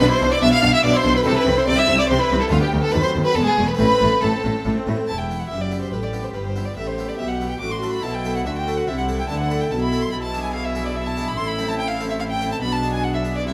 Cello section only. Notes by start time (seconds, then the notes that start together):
0.00 B2
0.21 B2
0.42 B2
0.63 B2
0.84 B2
1.05 B2
1.26 C3
1.46 C3
1.68 C3
1.88 C3
2.10 C3
2.31 C3
2.52 D2
2.72 D2
2.93 D#2
3.15 D#2
3.36 E2
3.58 E2
3.79 A2
4.01 A2
4.23 A2
4.45 A2
4.66 A2
4.88 A2
5.09 E2
5.51 F#2
5.93 A2
6.35 G2
6.77 A2
7.19 B2
7.61 A2
8.04 B2
8.45 D3
8.88 C3
9.29 D3
9.71 B2
10.13 B2
11.38 A2
12.62 B2
13.46 C3